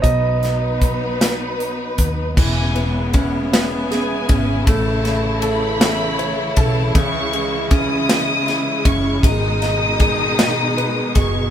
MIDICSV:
0, 0, Header, 1, 6, 480
1, 0, Start_track
1, 0, Key_signature, 4, "major"
1, 0, Tempo, 775194
1, 22, Time_signature, 6, 3, 24, 8
1, 2422, Tempo, 763359
1, 7196, End_track
2, 0, Start_track
2, 0, Title_t, "Violin section"
2, 0, Program_c, 0, 48
2, 1466, Note_on_c, 0, 80, 101
2, 1920, Note_off_c, 0, 80, 0
2, 1940, Note_on_c, 0, 78, 89
2, 2048, Note_off_c, 0, 78, 0
2, 2187, Note_on_c, 0, 80, 116
2, 2879, Note_off_c, 0, 80, 0
2, 2901, Note_on_c, 0, 81, 108
2, 3379, Note_on_c, 0, 83, 127
2, 3381, Note_off_c, 0, 81, 0
2, 4092, Note_on_c, 0, 81, 109
2, 4097, Note_off_c, 0, 83, 0
2, 4317, Note_off_c, 0, 81, 0
2, 4329, Note_on_c, 0, 85, 125
2, 4786, Note_off_c, 0, 85, 0
2, 4814, Note_on_c, 0, 87, 127
2, 5506, Note_off_c, 0, 87, 0
2, 5527, Note_on_c, 0, 85, 111
2, 5764, Note_on_c, 0, 87, 127
2, 5770, Note_off_c, 0, 85, 0
2, 6951, Note_off_c, 0, 87, 0
2, 6981, Note_on_c, 0, 85, 107
2, 7196, Note_off_c, 0, 85, 0
2, 7196, End_track
3, 0, Start_track
3, 0, Title_t, "Grand piano"
3, 0, Program_c, 1, 0
3, 0, Control_c, 1, 64, 127
3, 13, Note_on_c, 1, 75, 88
3, 15, Note_on_c, 1, 54, 47
3, 16, Note_on_c, 1, 59, 44
3, 21, Note_on_c, 1, 63, 50
3, 30, Control_c, 1, 64, 0
3, 119, Control_c, 1, 64, 127
3, 959, Note_off_c, 1, 75, 0
3, 1440, Note_off_c, 1, 54, 0
3, 1441, Note_off_c, 1, 59, 0
3, 1443, Note_off_c, 1, 63, 0
3, 1466, Note_on_c, 1, 52, 73
3, 1478, Control_c, 1, 64, 0
3, 1592, Control_c, 1, 64, 127
3, 1702, Note_on_c, 1, 59, 55
3, 1944, Note_on_c, 1, 61, 60
3, 2174, Note_off_c, 1, 59, 0
3, 2183, Note_on_c, 1, 59, 66
3, 2419, Note_on_c, 1, 68, 62
3, 2645, Note_off_c, 1, 61, 0
3, 2654, Note_on_c, 1, 61, 58
3, 2877, Note_off_c, 1, 52, 0
3, 2881, Note_off_c, 1, 59, 0
3, 2887, Note_off_c, 1, 68, 0
3, 2891, Note_off_c, 1, 61, 0
3, 2897, Note_on_c, 1, 57, 75
3, 2911, Control_c, 1, 64, 0
3, 3010, Control_c, 1, 64, 127
3, 3137, Note_on_c, 1, 64, 57
3, 3375, Note_on_c, 1, 69, 65
3, 3606, Note_off_c, 1, 64, 0
3, 3615, Note_on_c, 1, 64, 61
3, 3855, Note_on_c, 1, 73, 69
3, 4088, Note_off_c, 1, 69, 0
3, 4097, Note_on_c, 1, 69, 67
3, 4309, Note_off_c, 1, 57, 0
3, 4313, Note_off_c, 1, 64, 0
3, 4321, Note_off_c, 1, 73, 0
3, 4330, Note_off_c, 1, 69, 0
3, 4333, Note_on_c, 1, 49, 78
3, 4345, Control_c, 1, 64, 0
3, 4444, Control_c, 1, 64, 127
3, 4571, Note_on_c, 1, 56, 59
3, 4810, Note_on_c, 1, 61, 65
3, 5043, Note_off_c, 1, 56, 0
3, 5052, Note_on_c, 1, 56, 64
3, 5287, Note_on_c, 1, 64, 64
3, 5521, Note_off_c, 1, 61, 0
3, 5530, Note_on_c, 1, 61, 60
3, 5745, Note_off_c, 1, 49, 0
3, 5750, Note_off_c, 1, 56, 0
3, 5755, Note_off_c, 1, 64, 0
3, 5764, Note_off_c, 1, 61, 0
3, 5771, Note_on_c, 1, 56, 67
3, 5779, Control_c, 1, 64, 0
3, 5892, Control_c, 1, 64, 127
3, 6013, Note_on_c, 1, 63, 56
3, 6253, Note_on_c, 1, 68, 61
3, 6484, Note_off_c, 1, 63, 0
3, 6493, Note_on_c, 1, 63, 58
3, 6736, Note_on_c, 1, 71, 61
3, 6967, Note_off_c, 1, 68, 0
3, 6977, Note_on_c, 1, 68, 62
3, 7195, Note_off_c, 1, 56, 0
3, 7196, Note_off_c, 1, 63, 0
3, 7196, Note_off_c, 1, 68, 0
3, 7196, Note_off_c, 1, 71, 0
3, 7196, End_track
4, 0, Start_track
4, 0, Title_t, "String section"
4, 0, Program_c, 2, 48
4, 21, Note_on_c, 2, 71, 70
4, 22, Note_on_c, 2, 54, 70
4, 22, Note_on_c, 2, 59, 63
4, 24, Note_on_c, 2, 63, 62
4, 1454, Note_off_c, 2, 54, 0
4, 1454, Note_off_c, 2, 59, 0
4, 1454, Note_off_c, 2, 71, 0
4, 1455, Note_off_c, 2, 63, 0
4, 1457, Note_on_c, 2, 56, 73
4, 1461, Note_on_c, 2, 59, 74
4, 1461, Note_on_c, 2, 64, 84
4, 1466, Note_on_c, 2, 49, 78
4, 2883, Note_off_c, 2, 56, 0
4, 2885, Note_off_c, 2, 59, 0
4, 2901, Note_on_c, 2, 52, 77
4, 2902, Note_on_c, 2, 57, 78
4, 4323, Note_off_c, 2, 57, 0
4, 4341, Note_on_c, 2, 56, 80
4, 5743, Note_off_c, 2, 64, 0
4, 5745, Note_off_c, 2, 49, 0
4, 5746, Note_off_c, 2, 52, 0
4, 5767, Note_on_c, 2, 63, 92
4, 5768, Note_on_c, 2, 47, 77
4, 5768, Note_on_c, 2, 51, 78
4, 7196, Note_off_c, 2, 47, 0
4, 7196, Note_off_c, 2, 51, 0
4, 7196, Note_off_c, 2, 56, 0
4, 7196, Note_off_c, 2, 63, 0
4, 7196, End_track
5, 0, Start_track
5, 0, Title_t, "Fingered electric bass"
5, 0, Program_c, 3, 33
5, 23, Note_on_c, 3, 35, 99
5, 1204, Note_off_c, 3, 35, 0
5, 1229, Note_on_c, 3, 39, 82
5, 1454, Note_off_c, 3, 39, 0
5, 1468, Note_on_c, 3, 28, 101
5, 2638, Note_off_c, 3, 28, 0
5, 2664, Note_on_c, 3, 32, 90
5, 2889, Note_off_c, 3, 32, 0
5, 2902, Note_on_c, 3, 33, 111
5, 4073, Note_off_c, 3, 33, 0
5, 4094, Note_on_c, 3, 35, 101
5, 4321, Note_off_c, 3, 35, 0
5, 4333, Note_on_c, 3, 37, 97
5, 5504, Note_off_c, 3, 37, 0
5, 5529, Note_on_c, 3, 30, 88
5, 5756, Note_off_c, 3, 30, 0
5, 5769, Note_on_c, 3, 32, 103
5, 6954, Note_off_c, 3, 32, 0
5, 6977, Note_on_c, 3, 30, 91
5, 7196, Note_off_c, 3, 30, 0
5, 7196, End_track
6, 0, Start_track
6, 0, Title_t, "Drums"
6, 22, Note_on_c, 9, 36, 86
6, 23, Note_on_c, 9, 42, 70
6, 84, Note_off_c, 9, 36, 0
6, 85, Note_off_c, 9, 42, 0
6, 265, Note_on_c, 9, 42, 43
6, 271, Note_on_c, 9, 38, 31
6, 327, Note_off_c, 9, 42, 0
6, 333, Note_off_c, 9, 38, 0
6, 505, Note_on_c, 9, 36, 82
6, 505, Note_on_c, 9, 42, 56
6, 567, Note_off_c, 9, 36, 0
6, 567, Note_off_c, 9, 42, 0
6, 751, Note_on_c, 9, 38, 100
6, 751, Note_on_c, 9, 42, 79
6, 813, Note_off_c, 9, 38, 0
6, 813, Note_off_c, 9, 42, 0
6, 993, Note_on_c, 9, 42, 39
6, 1055, Note_off_c, 9, 42, 0
6, 1227, Note_on_c, 9, 42, 66
6, 1229, Note_on_c, 9, 36, 77
6, 1289, Note_off_c, 9, 42, 0
6, 1291, Note_off_c, 9, 36, 0
6, 1469, Note_on_c, 9, 36, 111
6, 1470, Note_on_c, 9, 49, 99
6, 1531, Note_off_c, 9, 36, 0
6, 1531, Note_off_c, 9, 49, 0
6, 1706, Note_on_c, 9, 51, 43
6, 1768, Note_off_c, 9, 51, 0
6, 1941, Note_on_c, 9, 51, 57
6, 1946, Note_on_c, 9, 36, 93
6, 2003, Note_off_c, 9, 51, 0
6, 2008, Note_off_c, 9, 36, 0
6, 2189, Note_on_c, 9, 38, 114
6, 2189, Note_on_c, 9, 51, 79
6, 2251, Note_off_c, 9, 38, 0
6, 2251, Note_off_c, 9, 51, 0
6, 2425, Note_on_c, 9, 38, 36
6, 2425, Note_on_c, 9, 51, 42
6, 2488, Note_off_c, 9, 38, 0
6, 2488, Note_off_c, 9, 51, 0
6, 2659, Note_on_c, 9, 51, 65
6, 2663, Note_on_c, 9, 36, 97
6, 2722, Note_off_c, 9, 51, 0
6, 2726, Note_off_c, 9, 36, 0
6, 2899, Note_on_c, 9, 51, 72
6, 2900, Note_on_c, 9, 36, 100
6, 2962, Note_off_c, 9, 51, 0
6, 2963, Note_off_c, 9, 36, 0
6, 3138, Note_on_c, 9, 51, 47
6, 3143, Note_on_c, 9, 38, 33
6, 3200, Note_off_c, 9, 51, 0
6, 3206, Note_off_c, 9, 38, 0
6, 3370, Note_on_c, 9, 51, 57
6, 3433, Note_off_c, 9, 51, 0
6, 3616, Note_on_c, 9, 38, 110
6, 3616, Note_on_c, 9, 51, 75
6, 3679, Note_off_c, 9, 38, 0
6, 3679, Note_off_c, 9, 51, 0
6, 3855, Note_on_c, 9, 51, 42
6, 3918, Note_off_c, 9, 51, 0
6, 4090, Note_on_c, 9, 51, 68
6, 4094, Note_on_c, 9, 36, 94
6, 4153, Note_off_c, 9, 51, 0
6, 4157, Note_off_c, 9, 36, 0
6, 4333, Note_on_c, 9, 36, 104
6, 4333, Note_on_c, 9, 51, 70
6, 4396, Note_off_c, 9, 36, 0
6, 4396, Note_off_c, 9, 51, 0
6, 4573, Note_on_c, 9, 51, 46
6, 4636, Note_off_c, 9, 51, 0
6, 4809, Note_on_c, 9, 51, 57
6, 4811, Note_on_c, 9, 36, 98
6, 4872, Note_off_c, 9, 51, 0
6, 4874, Note_off_c, 9, 36, 0
6, 5052, Note_on_c, 9, 38, 127
6, 5052, Note_on_c, 9, 51, 83
6, 5115, Note_off_c, 9, 38, 0
6, 5115, Note_off_c, 9, 51, 0
6, 5295, Note_on_c, 9, 38, 38
6, 5295, Note_on_c, 9, 51, 41
6, 5358, Note_off_c, 9, 38, 0
6, 5358, Note_off_c, 9, 51, 0
6, 5529, Note_on_c, 9, 36, 98
6, 5529, Note_on_c, 9, 51, 69
6, 5592, Note_off_c, 9, 36, 0
6, 5592, Note_off_c, 9, 51, 0
6, 5768, Note_on_c, 9, 36, 103
6, 5772, Note_on_c, 9, 51, 75
6, 5831, Note_off_c, 9, 36, 0
6, 5835, Note_off_c, 9, 51, 0
6, 6011, Note_on_c, 9, 51, 47
6, 6017, Note_on_c, 9, 38, 37
6, 6074, Note_off_c, 9, 51, 0
6, 6080, Note_off_c, 9, 38, 0
6, 6248, Note_on_c, 9, 51, 57
6, 6251, Note_on_c, 9, 36, 100
6, 6311, Note_off_c, 9, 51, 0
6, 6314, Note_off_c, 9, 36, 0
6, 6495, Note_on_c, 9, 38, 114
6, 6495, Note_on_c, 9, 51, 75
6, 6558, Note_off_c, 9, 38, 0
6, 6558, Note_off_c, 9, 51, 0
6, 6741, Note_on_c, 9, 51, 41
6, 6804, Note_off_c, 9, 51, 0
6, 6975, Note_on_c, 9, 51, 64
6, 6978, Note_on_c, 9, 36, 91
6, 7038, Note_off_c, 9, 51, 0
6, 7041, Note_off_c, 9, 36, 0
6, 7196, End_track
0, 0, End_of_file